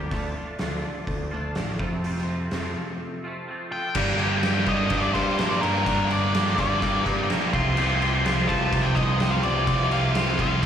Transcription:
Already playing: clean electric guitar A#3 D4
0.10 picked electric bass D2, clean electric guitar D3 A3 D4 F4, kick, open hi-hat
0.35 clean electric guitar A3 D4 F4
0.59 picked electric bass D2, clean electric guitar D3 A3 D4 F4, snare, open hi-hat
1.07 picked electric bass D2, kick, open hi-hat
1.31 picked electric bass D2, clean electric guitar A3 D4 F4
1.55 picked electric bass A1, clean electric guitar D3 A3 D4 F4, snare, open hi-hat
1.79 picked electric bass F2, clean electric guitar F2 C3 F3 A3 C4 F4, kick
2.03 clean electric guitar F2 C3 F3 A3 C4 F4, open hi-hat
2.17 snare
2.27 clean electric guitar F3 A3 C4 F4
2.51 clean electric guitar F2 C3 F3 A3 C4, picked electric bass F2, snare, open hi-hat
2.56 clean electric guitar F4
3.24 clean electric guitar F3 A3 C4 F4
3.48 clean electric guitar F3 A3 C4 F4
3.71 clean electric guitar F3 A3 C4 F4, lead electric guitar G5
3.95 overdriven electric guitar G2 D3 G3 A#3 D4 G4, picked electric bass G2, string section A#4 A5 D6, kick, crash
3.99 string section G4
4.18 overdriven electric guitar G3 A#3 D4 G4, crash
4.42 distorted electric guitar G2 D3, overdriven electric guitar G3 A#3 D4 G4, snare, crash
4.56 snare
4.65 picked electric bass G2, overdriven electric guitar G2 D3 G3 A#3 D4 G4, lead electric guitar D#5, kick, crash
4.90 picked electric bass G2, overdriven electric guitar G3 A#3 D4 G4, kick, crash
5.02 lead electric guitar D5
5.14 picked electric bass G2, overdriven electric guitar G2 D3 G3 A#3 D4 G4, lead electric guitar C5, kick, crash
5.39 overdriven electric guitar G3 A#3 D4, snare, crash
5.43 overdriven electric guitar G4
5.50 lead electric guitar D5
5.61 picked electric bass G2, overdriven electric guitar D4 G4, lead electric guitar A#4, crash
5.65 overdriven electric guitar G3 A#3
5.85 overdriven electric guitar G2 D3 G3 A#3 D4, picked electric bass G2, string section A#5, kick, crash
5.89 overdriven electric guitar G4
6.10 overdriven electric guitar G3 A#3 D4 G4, lead electric guitar D5, crash
6.34 distorted electric guitar G2 D3, overdriven electric guitar G3 A#3 D4 G4, snare, crash
6.47 snare
6.58 picked electric bass G2, overdriven electric guitar G2 D3 G3 A#3 D4 G4, lead electric guitar D5, kick, crash
6.81 picked electric bass G2, overdriven electric guitar G3 A#3 D4 G4, kick, crash
7.05 picked electric bass G2, overdriven electric guitar G2 D3 G3 A#3 D4 G4, kick, crash
7.29 overdriven electric guitar G3 A#3 D4 G4, snare, crash
7.53 picked electric bass C2, overdriven electric guitar C3 F3 C4 F4 G4, string section C5 F5 C6, lead electric guitar C6, kick, crash
7.76 picked electric bass C2, overdriven electric guitar C3 F3 C4 F4 G4, crash
8.01 overdriven electric guitar C4 F4 G4, crash
8.25 distorted electric guitar C3, overdriven electric guitar F3 C4 F4 G4, snare, crash
8.39 snare
8.48 picked electric bass C2, overdriven electric guitar C3 F3 C4 F4 G4, lead electric guitar A5, kick, crash
8.73 picked electric bass C2, overdriven electric guitar F3 C4 F4 G4, kick, crash
8.82 lead electric guitar G5
8.95 picked electric bass C2, overdriven electric guitar C3 F3 C4 F4 G4, lead electric guitar D#5, kick, crash
9.20 overdriven electric guitar F3 C4 F4 G4, snare, crash
9.31 lead electric guitar F5
9.43 picked electric bass C2, overdriven electric guitar C4 F4 G4, lead electric guitar D5, crash
9.66 picked electric bass C2, overdriven electric guitar C3 F3 C4 F4 G4, kick, crash
9.91 overdriven electric guitar C4 F4 G4, lead electric guitar F5, crash
10.14 distorted electric guitar C3, overdriven electric guitar F3 C4 F4 G4, snare, crash
10.28 snare
10.39 picked electric bass C2, overdriven electric guitar C3 F3 C4 F4 G4, lead electric guitar F5, kick, crash
10.63 picked electric bass C2, kick

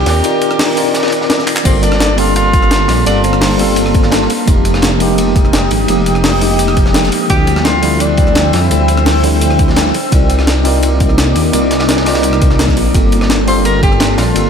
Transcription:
Already playing: tine electric piano D#3 C4 D#4 F4 A#4 D5, tenor saxophone G4, ambient pad A#4 D6
0.06 detuned saw bass D#2, snare, open hi-hat, ride
0.22 tine electric piano C4 D#4 F4 A#4 D5, closed hi-hat, ride
0.41 closed hi-hat, ride
0.51 cross-stick
0.59 snare, closed hi-hat, open hi-hat
0.75 tine electric piano C4 D#4 F4 A#4 D5, open hi-hat, ride
0.94 snare, closed hi-hat, ride
1.03 cross-stick, snare, ride
1.08 snare, ride
1.12 closed hi-hat, ride
1.21 snare
1.30 snare, closed hi-hat, ride
1.38 cross-stick, snare
1.47 clap, open hi-hat, ride
1.56 clap
1.64 detuned saw bass G1, tine electric piano G3 A#3 C4 F4 A4, ambient pad A#3 F5 A5 C6, tenor saxophone C4, kick, closed hi-hat, crash, ride
1.83 tenor saxophone D4, closed hi-hat, ride
1.92 cross-stick, snare
2.00 snare, closed hi-hat, ride
2.16 tine electric piano G3 A#3 C4 F4 A4, tenor saxophone F4, open hi-hat, ride
2.36 tenor saxophone F4, closed hi-hat, ride
2.53 kick, closed hi-hat, ride
2.62 cross-stick
2.71 snare, closed hi-hat, ride
2.88 detuned saw bass A#1, snare, open hi-hat, ride
3.04 detuned saw bass G1, tine electric piano G3 A#3 C4 F4 A4, tenor saxophone D4, closed hi-hat, ride
3.24 tenor saxophone C4, closed hi-hat, ride
3.33 cross-stick
3.41 snare, closed hi-hat, open hi-hat
3.58 tine electric piano G3 A#3 C4 F4 A4, open hi-hat, ride
3.76 closed hi-hat, ride
3.86 cross-stick
3.95 kick, closed hi-hat, ride
4.03 cross-stick, snare
4.12 snare, closed hi-hat, ride
4.21 snare
4.30 ambient pad G5 D#6, open hi-hat, ride
4.46 detuned saw bass F1, tine electric piano F3 G#3 A#3 D#4 G4, kick, closed hi-hat, ride
4.65 closed hi-hat, ride
4.74 cross-stick, snare
4.82 snare, closed hi-hat, ride
4.99 tine electric piano F3 G#3 A#3 D#4 G4, open hi-hat, ride
5.18 closed hi-hat, ride
5.36 kick, closed hi-hat, ride
5.45 cross-stick
5.53 snare, closed hi-hat, ride
5.71 detuned saw bass G#1, open hi-hat, ride
5.87 detuned saw bass F1, tine electric piano F3 G#3 A#3 D#4 G4, closed hi-hat, ride
6.06 closed hi-hat, ride
6.15 cross-stick
6.24 snare, closed hi-hat, open hi-hat
6.40 tine electric piano F3 G#3 A#3 D#4 G4, open hi-hat, ride
6.59 closed hi-hat, ride
6.68 cross-stick
6.77 kick, closed hi-hat, ride
6.86 cross-stick, snare
6.94 snare, closed hi-hat, ride
7.03 snare
7.12 open hi-hat, ride
7.28 detuned saw bass D2, tine electric piano D3 F3 G3 C4 E4, tenor saxophone G4, ambient pad C5 G5 E6, kick, closed hi-hat, ride
7.47 closed hi-hat, ride
7.56 cross-stick, snare
7.65 tenor saxophone F4, snare, closed hi-hat, ride
7.81 tine electric piano D3 F3 G3 C4 E4, open hi-hat, ride
8.00 tenor saxophone D4, closed hi-hat, ride
8.17 kick, closed hi-hat, ride
8.27 cross-stick
8.35 snare, closed hi-hat, ride
8.53 detuned saw bass F2, tenor saxophone E4, snare, open hi-hat, ride
8.69 detuned saw bass D2, tine electric piano D3 F3 G3 C4 E4, closed hi-hat, ride
8.88 closed hi-hat, ride
8.97 cross-stick
9.06 snare, closed hi-hat, open hi-hat
9.22 tine electric piano D3 F3 G3 C4 E4, open hi-hat, ride
9.41 closed hi-hat, ride
9.51 cross-stick
9.59 kick, closed hi-hat, ride
9.68 cross-stick, snare
9.76 snare, closed hi-hat, ride
9.86 snare
9.94 ambient pad A#3 D#4 D6, open hi-hat, ride
10.10 detuned saw bass C2, tine electric piano C4 D#4 F4 A#4 D5, kick, closed hi-hat, ride
10.29 closed hi-hat, ride
10.39 cross-stick, snare
10.47 snare, closed hi-hat, ride
10.63 tine electric piano C4 D#4 F4 A#4 D5, open hi-hat, ride
10.83 closed hi-hat, ride
11.00 kick, closed hi-hat, ride
11.09 cross-stick
11.18 snare, closed hi-hat, ride
11.35 detuned saw bass D#2, open hi-hat, ride
11.52 detuned saw bass C2, tine electric piano C4 D#4 F4 A#4 D5, closed hi-hat, ride
11.71 snare, closed hi-hat, ride
11.80 cross-stick, snare, ride
11.89 snare, closed hi-hat, ride
11.97 snare, ride
12.05 tine electric piano C4 D#4 F4 A#4 D5, snare, open hi-hat, ride
12.15 snare, ride
12.23 closed hi-hat, ride
12.33 cross-stick
12.42 kick, closed hi-hat, ride
12.50 cross-stick, snare
12.59 snare, closed hi-hat, ride
12.68 kick, cross-stick, snare
12.77 detuned saw bass A#1, open hi-hat, ride
12.93 detuned saw bass G1, tine electric piano G3 A#3 C4 F4 A4, ambient pad A5 C6, kick, closed hi-hat, ride
13.12 closed hi-hat, ride
13.21 cross-stick, snare
13.30 snare, closed hi-hat, ride
13.46 tine electric piano G3 A#3 C4 F4 A4, tenor saxophone C5, open hi-hat, ride
13.65 tenor saxophone A#4, closed hi-hat, ride
13.83 tenor saxophone G4, kick, closed hi-hat, ride
13.92 cross-stick
14.00 snare, closed hi-hat, ride
14.18 detuned saw bass A#1, tenor saxophone F4, snare, open hi-hat, ride
14.34 detuned saw bass G1, tine electric piano G3 A#3 C4 F4 A4, closed hi-hat, ride

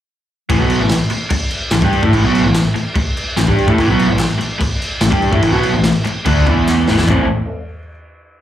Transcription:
0.49 picked electric bass A1, overdriven electric guitar A2 E3, kick, crash
0.59 picked electric bass B1, overdriven electric guitar B2 F#3 B3
0.70 crash
0.79 picked electric bass A1, overdriven electric guitar A2 E3
0.89 snare, clap, crash
1.10 muted picked electric bass stroke, muted overdriven electric guitar stroke, crash
1.30 muted picked electric bass stroke, muted overdriven electric guitar stroke, kick, crash
1.51 crash
1.71 picked electric bass A1, overdriven electric guitar A2 E3, snare, clap, crash
1.82 picked electric bass G2, overdriven electric guitar G3 D4 G4, kick
1.93 crash
2.03 picked electric bass A2, overdriven electric guitar A3 E4, kick
2.13 picked electric bass A1, overdriven electric guitar A2 E3, kick, crash
2.23 picked electric bass B1, overdriven electric guitar B2 F#3 B3
2.35 crash
2.43 picked electric bass A1, overdriven electric guitar A2 E3
2.55 snare, clap, crash
2.75 muted picked electric bass stroke, muted overdriven electric guitar stroke, crash
2.95 muted picked electric bass stroke, muted overdriven electric guitar stroke, kick, crash
3.17 crash
3.37 picked electric bass A1, overdriven electric guitar A2 E3, snare, clap, crash
3.47 picked electric bass G2, overdriven electric guitar G3 D4 G4, kick
3.58 crash
3.67 picked electric bass A2, overdriven electric guitar A3 E4, kick
3.78 picked electric bass A1, overdriven electric guitar A2 E3, kick, crash
3.88 picked electric bass B1, overdriven electric guitar B2 F#3 B3
3.99 crash
4.09 picked electric bass A1, overdriven electric guitar A2 E3
4.19 snare, clap, crash
4.39 muted overdriven electric guitar stroke, muted picked electric bass stroke, crash
4.60 muted overdriven electric guitar stroke, muted picked electric bass stroke, kick, crash
4.82 crash
5.01 picked electric bass A1, overdriven electric guitar A2 E3, snare, clap, crash
5.10 picked electric bass G2, overdriven electric guitar G3 D4 G4, kick
5.22 crash
5.32 picked electric bass A2, overdriven electric guitar A3 E4, kick
5.42 picked electric bass A1, overdriven electric guitar A2 E3, kick, crash
5.52 picked electric bass B1, overdriven electric guitar B2 F#3 B3
5.63 crash
5.73 picked electric bass A1, overdriven electric guitar A2 E3
5.84 snare, clap, crash
6.05 muted picked electric bass stroke, muted overdriven electric guitar stroke, clap, crash
6.25 picked electric bass D2, overdriven electric guitar D3 A3 D4, kick, crash
6.47 picked electric bass E2, overdriven electric guitar E3 B3 E4, kick, crash
6.67 snare, clap
6.87 picked electric bass A1, overdriven electric guitar A2 E3, snare
6.98 picked electric bass E2, overdriven electric guitar E3 B3, snare
7.07 picked electric bass A1, overdriven electric guitar A2 E3 A3 C4 E4, kick, clap, floor tom

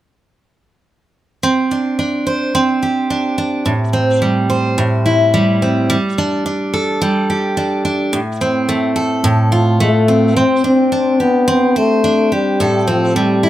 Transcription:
1.43 steel-string acoustic guitar C4
1.71 steel-string acoustic guitar D4
1.99 steel-string acoustic guitar D4
2.27 steel-string acoustic guitar C5
2.55 steel-string acoustic guitar C4
2.83 steel-string acoustic guitar G4
3.10 steel-string acoustic guitar D4
3.38 steel-string acoustic guitar D4
3.66 steel-string acoustic guitar A2
3.93 steel-string acoustic guitar C4
4.22 steel-string acoustic guitar G3
4.50 steel-string acoustic guitar C5
4.78 steel-string acoustic guitar A2
5.06 steel-string acoustic guitar E4
5.34 steel-string acoustic guitar G3
5.62 steel-string acoustic guitar C4
5.90 steel-string acoustic guitar G3
6.18 steel-string acoustic guitar D4
6.46 steel-string acoustic guitar D4
6.74 steel-string acoustic guitar A4
7.02 steel-string acoustic guitar G3
7.30 steel-string acoustic guitar G4
7.57 steel-string acoustic guitar D4
7.85 steel-string acoustic guitar D4
8.13 steel-string acoustic guitar A2
8.41 steel-string acoustic guitar C4
8.69 steel-string acoustic guitar A3
8.96 steel-string acoustic guitar A4
9.24 steel-string acoustic guitar A2
9.52 steel-string acoustic guitar F4
9.80 steel-string acoustic guitar A3, trombone A3
10.08 steel-string acoustic guitar C4
10.37 steel-string acoustic guitar C4, trombone C4
10.64 trombone C4, steel-string acoustic guitar D4
10.92 steel-string acoustic guitar D4
11.20 trombone B3, steel-string acoustic guitar G4
11.48 steel-string acoustic guitar C4
11.76 trombone A3, steel-string acoustic guitar C5
12.04 steel-string acoustic guitar D4
12.32 trombone G3, steel-string acoustic guitar G4
12.60 steel-string acoustic guitar A2 A4
12.88 trombone F3, steel-string acoustic guitar C4
13.16 steel-string acoustic guitar G3, trombone G3
13.43 steel-string acoustic guitar E4

